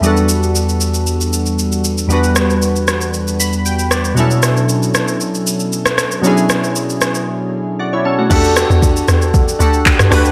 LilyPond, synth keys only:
\new Staff \with { instrumentName = "Synth keys" } { \time 4/4 \key e \dorian \tempo 4 = 116 << { r1 | r2 r8 b''8 g''8 d''8 | r1 | r2. <fis' d''>16 <e' cis''>16 <cis' a'>16 <a fis'>16~ |
<a fis'>16 r2. r8. | } \\ { <e, g b d' fis' a'>1 | <e, g b d' fis' b'>1 | <b, fis cis' d' e' a'>1 | <b, fis cis' d' e' gis'>1 |
<d' fis' g' a'>4. r4 <d' fis' g' a'>4 <d' fis' g' b'>8 | } >> }